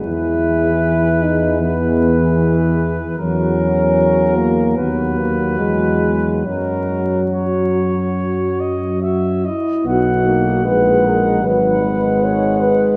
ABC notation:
X:1
M:4/4
L:1/8
Q:1/4=76
K:B
V:1 name="Flugelhorn"
B4 B4 | A4 B4 | A2 c3 d e d | f2 f2 f4 |]
V:2 name="French horn section"
G4 G4 | F4 F4 | F6 F E | F2 B A B2 c B |]
V:3 name="Euphonium"
E3 D B,3 z | C3 A, B, A, G,2 | F,6 z2 | D2 D2 D4 |]
V:4 name="Trombone" clef=bass
E,4 E,4 | F,4 F,4 | F,6- F, z | B, A, G,2 F, G,3 |]
V:5 name="Tuba" clef=bass
E,,8 | E,,4 D,,2 E,,2 | F,,6- F,, z | B,,,2 A,,,2 G,,,4 |]